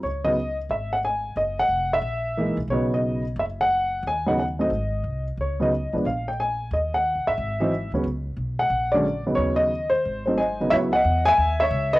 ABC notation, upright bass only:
X:1
M:4/4
L:1/8
Q:"Swing" 1/4=180
K:C#m
V:1 name="Upright bass" clef=bass
C,,4 G,,,4 | F,,,2 ^E,,,2 ^A,,,3 A,,, | B,,,4 F,,,4 | D,,4 G,,,2 ^B,,,2 |
C,,3 B,,, _B,,,4 | D,,2- (3D,, C,, A,,, G,,,3 =D,, | C,,2 B,,,2 ^A,,,4 | D,,4 G,,,4 |
C,,2 E,,2 D,,2 C,,2 |]